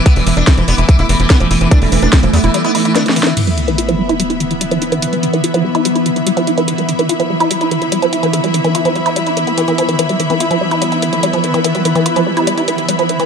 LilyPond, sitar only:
\new Staff \with { instrumentName = "Sitar" } { \clef bass \time 4/4 \key e \phrygian \tempo 4 = 145 b16 e16 e16 d'16 e16 e16 b16 e16 e16 e'16 e16 e16 b16 e16 e16 e16 | d'16 e16 e16 d'16 e16 e16 b16 e16 e16 b16 e16 e16 d'16 e16 e16 e16 | r1 | r1 |
r1 | r1 | r1 | r1 | }